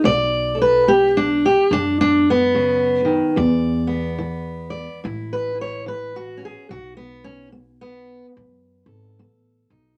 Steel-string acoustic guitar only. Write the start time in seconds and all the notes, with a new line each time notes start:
0.04 B2 D5
0.55 A4
0.62 B4
0.88 B3 G4
1.17 D4
1.46 G4
1.72 B2 D4
2.01 D4
2.30 B3
2.55 C#3
3.05 D#3
3.36 E2 D5
3.87 B3
4.19 E3
4.70 D5
5.04 A2 E4
5.33 B4
5.55 E4
5.61 C#5
5.86 E3 B4
6.16 F#4
6.37 C#4
6.45 G#4
6.69 B2 F#4
6.97 B3
7.24 C#4
7.52 B3
7.81 B3
8.37 B2
8.86 A4
9.19 B3
9.71 D#4